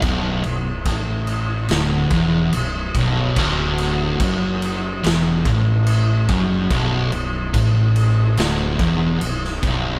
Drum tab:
CC |x-x-x-x-x-x-x-x-|x-x-x-x-x-x-x-x-|x-x-x-x-x-x-x-x-|
SD |--------o-------|--------o-------|--------o----o--|
BD |o---o-----o---o-|o---o-----o---o-|o---o-----o---o-|